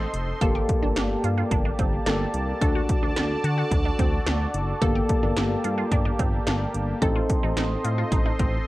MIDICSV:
0, 0, Header, 1, 6, 480
1, 0, Start_track
1, 0, Key_signature, -2, "minor"
1, 0, Tempo, 550459
1, 360, Time_signature, 4, 2, 24, 8
1, 7560, End_track
2, 0, Start_track
2, 0, Title_t, "Analog synth pad"
2, 0, Program_c, 0, 89
2, 0, Note_on_c, 0, 69, 82
2, 0, Note_on_c, 0, 72, 78
2, 0, Note_on_c, 0, 75, 73
2, 0, Note_on_c, 0, 84, 91
2, 341, Note_off_c, 0, 69, 0
2, 341, Note_off_c, 0, 72, 0
2, 341, Note_off_c, 0, 75, 0
2, 341, Note_off_c, 0, 84, 0
2, 360, Note_on_c, 0, 67, 83
2, 360, Note_on_c, 0, 74, 78
2, 360, Note_on_c, 0, 81, 89
2, 361, Note_on_c, 0, 58, 75
2, 2261, Note_off_c, 0, 58, 0
2, 2261, Note_off_c, 0, 67, 0
2, 2279, Note_on_c, 0, 66, 84
2, 2279, Note_on_c, 0, 69, 75
2, 4180, Note_off_c, 0, 66, 0
2, 4180, Note_off_c, 0, 69, 0
2, 4199, Note_on_c, 0, 58, 75
2, 4199, Note_on_c, 0, 67, 83
2, 6085, Note_off_c, 0, 74, 0
2, 6085, Note_off_c, 0, 81, 0
2, 6100, Note_off_c, 0, 58, 0
2, 6100, Note_off_c, 0, 67, 0
2, 6120, Note_on_c, 0, 69, 80
2, 6120, Note_on_c, 0, 72, 76
2, 6120, Note_on_c, 0, 75, 78
2, 6120, Note_on_c, 0, 84, 94
2, 7560, Note_off_c, 0, 69, 0
2, 7560, Note_off_c, 0, 72, 0
2, 7560, Note_off_c, 0, 75, 0
2, 7560, Note_off_c, 0, 84, 0
2, 7560, End_track
3, 0, Start_track
3, 0, Title_t, "Synth keys"
3, 0, Program_c, 1, 88
3, 0, Note_on_c, 1, 60, 75
3, 0, Note_on_c, 1, 63, 65
3, 0, Note_on_c, 1, 69, 81
3, 325, Note_off_c, 1, 60, 0
3, 325, Note_off_c, 1, 63, 0
3, 325, Note_off_c, 1, 69, 0
3, 360, Note_on_c, 1, 58, 76
3, 361, Note_on_c, 1, 67, 67
3, 361, Note_on_c, 1, 69, 80
3, 1771, Note_off_c, 1, 58, 0
3, 1772, Note_off_c, 1, 67, 0
3, 1772, Note_off_c, 1, 69, 0
3, 1800, Note_on_c, 1, 58, 57
3, 1800, Note_on_c, 1, 67, 53
3, 1801, Note_on_c, 1, 69, 63
3, 2270, Note_off_c, 1, 69, 0
3, 2280, Note_off_c, 1, 58, 0
3, 2280, Note_off_c, 1, 67, 0
3, 2280, Note_on_c, 1, 62, 73
3, 2280, Note_on_c, 1, 66, 69
3, 2281, Note_on_c, 1, 69, 77
3, 4165, Note_off_c, 1, 62, 0
3, 4165, Note_off_c, 1, 66, 0
3, 4165, Note_off_c, 1, 69, 0
3, 4199, Note_on_c, 1, 58, 75
3, 4199, Note_on_c, 1, 67, 65
3, 4200, Note_on_c, 1, 69, 83
3, 6084, Note_off_c, 1, 67, 0
3, 6085, Note_off_c, 1, 58, 0
3, 6085, Note_off_c, 1, 69, 0
3, 6120, Note_on_c, 1, 60, 75
3, 6120, Note_on_c, 1, 63, 68
3, 6120, Note_on_c, 1, 69, 81
3, 7560, Note_off_c, 1, 60, 0
3, 7560, Note_off_c, 1, 63, 0
3, 7560, Note_off_c, 1, 69, 0
3, 7560, End_track
4, 0, Start_track
4, 0, Title_t, "Synth arpeggio sound"
4, 0, Program_c, 2, 84
4, 360, Note_on_c, 2, 69, 92
4, 444, Note_off_c, 2, 69, 0
4, 480, Note_on_c, 2, 67, 77
4, 647, Note_off_c, 2, 67, 0
4, 719, Note_on_c, 2, 62, 76
4, 803, Note_off_c, 2, 62, 0
4, 839, Note_on_c, 2, 62, 87
4, 1007, Note_off_c, 2, 62, 0
4, 1080, Note_on_c, 2, 65, 80
4, 1163, Note_off_c, 2, 65, 0
4, 1200, Note_on_c, 2, 65, 78
4, 1283, Note_off_c, 2, 65, 0
4, 1320, Note_on_c, 2, 62, 89
4, 1403, Note_off_c, 2, 62, 0
4, 1440, Note_on_c, 2, 62, 73
4, 1524, Note_off_c, 2, 62, 0
4, 1560, Note_on_c, 2, 60, 80
4, 1728, Note_off_c, 2, 60, 0
4, 1799, Note_on_c, 2, 62, 84
4, 1967, Note_off_c, 2, 62, 0
4, 2279, Note_on_c, 2, 69, 94
4, 2363, Note_off_c, 2, 69, 0
4, 2400, Note_on_c, 2, 66, 77
4, 2568, Note_off_c, 2, 66, 0
4, 2640, Note_on_c, 2, 62, 76
4, 2724, Note_off_c, 2, 62, 0
4, 2759, Note_on_c, 2, 62, 89
4, 2927, Note_off_c, 2, 62, 0
4, 3000, Note_on_c, 2, 66, 80
4, 3084, Note_off_c, 2, 66, 0
4, 3119, Note_on_c, 2, 66, 77
4, 3203, Note_off_c, 2, 66, 0
4, 3239, Note_on_c, 2, 62, 86
4, 3323, Note_off_c, 2, 62, 0
4, 3360, Note_on_c, 2, 62, 75
4, 3444, Note_off_c, 2, 62, 0
4, 3480, Note_on_c, 2, 60, 82
4, 3647, Note_off_c, 2, 60, 0
4, 3719, Note_on_c, 2, 62, 82
4, 3887, Note_off_c, 2, 62, 0
4, 4200, Note_on_c, 2, 69, 96
4, 4283, Note_off_c, 2, 69, 0
4, 4320, Note_on_c, 2, 67, 76
4, 4487, Note_off_c, 2, 67, 0
4, 4560, Note_on_c, 2, 62, 74
4, 4643, Note_off_c, 2, 62, 0
4, 4680, Note_on_c, 2, 62, 87
4, 4847, Note_off_c, 2, 62, 0
4, 4919, Note_on_c, 2, 65, 78
4, 5003, Note_off_c, 2, 65, 0
4, 5038, Note_on_c, 2, 65, 77
4, 5123, Note_off_c, 2, 65, 0
4, 5159, Note_on_c, 2, 62, 93
4, 5243, Note_off_c, 2, 62, 0
4, 5279, Note_on_c, 2, 62, 75
4, 5363, Note_off_c, 2, 62, 0
4, 5399, Note_on_c, 2, 60, 80
4, 5567, Note_off_c, 2, 60, 0
4, 5639, Note_on_c, 2, 62, 84
4, 5806, Note_off_c, 2, 62, 0
4, 6119, Note_on_c, 2, 69, 93
4, 6203, Note_off_c, 2, 69, 0
4, 6239, Note_on_c, 2, 65, 73
4, 6407, Note_off_c, 2, 65, 0
4, 6480, Note_on_c, 2, 63, 77
4, 6564, Note_off_c, 2, 63, 0
4, 6599, Note_on_c, 2, 63, 91
4, 6767, Note_off_c, 2, 63, 0
4, 6839, Note_on_c, 2, 65, 77
4, 6923, Note_off_c, 2, 65, 0
4, 6960, Note_on_c, 2, 65, 80
4, 7043, Note_off_c, 2, 65, 0
4, 7080, Note_on_c, 2, 63, 92
4, 7164, Note_off_c, 2, 63, 0
4, 7200, Note_on_c, 2, 63, 73
4, 7284, Note_off_c, 2, 63, 0
4, 7319, Note_on_c, 2, 60, 81
4, 7487, Note_off_c, 2, 60, 0
4, 7560, End_track
5, 0, Start_track
5, 0, Title_t, "Analog synth bass"
5, 0, Program_c, 3, 38
5, 119, Note_on_c, 3, 29, 90
5, 287, Note_off_c, 3, 29, 0
5, 359, Note_on_c, 3, 31, 109
5, 528, Note_off_c, 3, 31, 0
5, 719, Note_on_c, 3, 31, 104
5, 803, Note_off_c, 3, 31, 0
5, 840, Note_on_c, 3, 31, 102
5, 1008, Note_off_c, 3, 31, 0
5, 1079, Note_on_c, 3, 43, 94
5, 1247, Note_off_c, 3, 43, 0
5, 1318, Note_on_c, 3, 31, 105
5, 1487, Note_off_c, 3, 31, 0
5, 1560, Note_on_c, 3, 31, 94
5, 1728, Note_off_c, 3, 31, 0
5, 1799, Note_on_c, 3, 31, 102
5, 1968, Note_off_c, 3, 31, 0
5, 2039, Note_on_c, 3, 36, 91
5, 2207, Note_off_c, 3, 36, 0
5, 2279, Note_on_c, 3, 38, 107
5, 2447, Note_off_c, 3, 38, 0
5, 2639, Note_on_c, 3, 38, 102
5, 2723, Note_off_c, 3, 38, 0
5, 2759, Note_on_c, 3, 38, 97
5, 2927, Note_off_c, 3, 38, 0
5, 2999, Note_on_c, 3, 50, 93
5, 3167, Note_off_c, 3, 50, 0
5, 3238, Note_on_c, 3, 38, 108
5, 3407, Note_off_c, 3, 38, 0
5, 3480, Note_on_c, 3, 38, 100
5, 3648, Note_off_c, 3, 38, 0
5, 3719, Note_on_c, 3, 38, 97
5, 3888, Note_off_c, 3, 38, 0
5, 3959, Note_on_c, 3, 30, 90
5, 4128, Note_off_c, 3, 30, 0
5, 4199, Note_on_c, 3, 31, 111
5, 4367, Note_off_c, 3, 31, 0
5, 4560, Note_on_c, 3, 31, 99
5, 4644, Note_off_c, 3, 31, 0
5, 4679, Note_on_c, 3, 31, 103
5, 4848, Note_off_c, 3, 31, 0
5, 4920, Note_on_c, 3, 43, 100
5, 5088, Note_off_c, 3, 43, 0
5, 5158, Note_on_c, 3, 31, 108
5, 5326, Note_off_c, 3, 31, 0
5, 5400, Note_on_c, 3, 31, 103
5, 5568, Note_off_c, 3, 31, 0
5, 5640, Note_on_c, 3, 31, 102
5, 5808, Note_off_c, 3, 31, 0
5, 5880, Note_on_c, 3, 31, 91
5, 6048, Note_off_c, 3, 31, 0
5, 6120, Note_on_c, 3, 33, 105
5, 6288, Note_off_c, 3, 33, 0
5, 6479, Note_on_c, 3, 33, 106
5, 6563, Note_off_c, 3, 33, 0
5, 6600, Note_on_c, 3, 33, 102
5, 6768, Note_off_c, 3, 33, 0
5, 6840, Note_on_c, 3, 45, 95
5, 7008, Note_off_c, 3, 45, 0
5, 7078, Note_on_c, 3, 33, 106
5, 7247, Note_off_c, 3, 33, 0
5, 7320, Note_on_c, 3, 33, 98
5, 7488, Note_off_c, 3, 33, 0
5, 7560, End_track
6, 0, Start_track
6, 0, Title_t, "Drums"
6, 120, Note_on_c, 9, 42, 80
6, 207, Note_off_c, 9, 42, 0
6, 360, Note_on_c, 9, 36, 107
6, 360, Note_on_c, 9, 42, 73
6, 447, Note_off_c, 9, 36, 0
6, 447, Note_off_c, 9, 42, 0
6, 601, Note_on_c, 9, 42, 83
6, 602, Note_on_c, 9, 36, 95
6, 688, Note_off_c, 9, 42, 0
6, 690, Note_off_c, 9, 36, 0
6, 838, Note_on_c, 9, 38, 113
6, 839, Note_on_c, 9, 42, 73
6, 926, Note_off_c, 9, 38, 0
6, 926, Note_off_c, 9, 42, 0
6, 1081, Note_on_c, 9, 42, 75
6, 1168, Note_off_c, 9, 42, 0
6, 1318, Note_on_c, 9, 36, 96
6, 1319, Note_on_c, 9, 42, 83
6, 1405, Note_off_c, 9, 36, 0
6, 1407, Note_off_c, 9, 42, 0
6, 1560, Note_on_c, 9, 36, 90
6, 1560, Note_on_c, 9, 42, 68
6, 1647, Note_off_c, 9, 36, 0
6, 1647, Note_off_c, 9, 42, 0
6, 1799, Note_on_c, 9, 38, 109
6, 1799, Note_on_c, 9, 42, 72
6, 1886, Note_off_c, 9, 38, 0
6, 1887, Note_off_c, 9, 42, 0
6, 2040, Note_on_c, 9, 42, 79
6, 2127, Note_off_c, 9, 42, 0
6, 2280, Note_on_c, 9, 36, 106
6, 2280, Note_on_c, 9, 42, 72
6, 2367, Note_off_c, 9, 36, 0
6, 2367, Note_off_c, 9, 42, 0
6, 2521, Note_on_c, 9, 42, 83
6, 2522, Note_on_c, 9, 36, 99
6, 2608, Note_off_c, 9, 42, 0
6, 2609, Note_off_c, 9, 36, 0
6, 2759, Note_on_c, 9, 38, 110
6, 2760, Note_on_c, 9, 42, 74
6, 2846, Note_off_c, 9, 38, 0
6, 2847, Note_off_c, 9, 42, 0
6, 3001, Note_on_c, 9, 42, 76
6, 3088, Note_off_c, 9, 42, 0
6, 3238, Note_on_c, 9, 36, 94
6, 3239, Note_on_c, 9, 42, 87
6, 3325, Note_off_c, 9, 36, 0
6, 3327, Note_off_c, 9, 42, 0
6, 3480, Note_on_c, 9, 36, 93
6, 3480, Note_on_c, 9, 42, 70
6, 3567, Note_off_c, 9, 36, 0
6, 3567, Note_off_c, 9, 42, 0
6, 3719, Note_on_c, 9, 38, 111
6, 3719, Note_on_c, 9, 42, 71
6, 3806, Note_off_c, 9, 38, 0
6, 3806, Note_off_c, 9, 42, 0
6, 3960, Note_on_c, 9, 42, 81
6, 4047, Note_off_c, 9, 42, 0
6, 4199, Note_on_c, 9, 36, 109
6, 4200, Note_on_c, 9, 42, 70
6, 4286, Note_off_c, 9, 36, 0
6, 4287, Note_off_c, 9, 42, 0
6, 4441, Note_on_c, 9, 42, 85
6, 4442, Note_on_c, 9, 36, 98
6, 4528, Note_off_c, 9, 42, 0
6, 4529, Note_off_c, 9, 36, 0
6, 4678, Note_on_c, 9, 38, 112
6, 4679, Note_on_c, 9, 42, 75
6, 4766, Note_off_c, 9, 38, 0
6, 4766, Note_off_c, 9, 42, 0
6, 4921, Note_on_c, 9, 42, 78
6, 5008, Note_off_c, 9, 42, 0
6, 5158, Note_on_c, 9, 36, 95
6, 5159, Note_on_c, 9, 42, 83
6, 5245, Note_off_c, 9, 36, 0
6, 5246, Note_off_c, 9, 42, 0
6, 5400, Note_on_c, 9, 36, 94
6, 5400, Note_on_c, 9, 42, 72
6, 5487, Note_off_c, 9, 36, 0
6, 5487, Note_off_c, 9, 42, 0
6, 5639, Note_on_c, 9, 38, 107
6, 5640, Note_on_c, 9, 42, 72
6, 5727, Note_off_c, 9, 38, 0
6, 5727, Note_off_c, 9, 42, 0
6, 5880, Note_on_c, 9, 42, 80
6, 5968, Note_off_c, 9, 42, 0
6, 6120, Note_on_c, 9, 36, 108
6, 6120, Note_on_c, 9, 42, 73
6, 6207, Note_off_c, 9, 36, 0
6, 6207, Note_off_c, 9, 42, 0
6, 6361, Note_on_c, 9, 42, 83
6, 6362, Note_on_c, 9, 36, 97
6, 6449, Note_off_c, 9, 42, 0
6, 6450, Note_off_c, 9, 36, 0
6, 6599, Note_on_c, 9, 38, 116
6, 6600, Note_on_c, 9, 42, 75
6, 6686, Note_off_c, 9, 38, 0
6, 6687, Note_off_c, 9, 42, 0
6, 6841, Note_on_c, 9, 42, 79
6, 6928, Note_off_c, 9, 42, 0
6, 7078, Note_on_c, 9, 36, 97
6, 7079, Note_on_c, 9, 42, 86
6, 7165, Note_off_c, 9, 36, 0
6, 7166, Note_off_c, 9, 42, 0
6, 7319, Note_on_c, 9, 42, 72
6, 7320, Note_on_c, 9, 36, 96
6, 7407, Note_off_c, 9, 36, 0
6, 7407, Note_off_c, 9, 42, 0
6, 7560, End_track
0, 0, End_of_file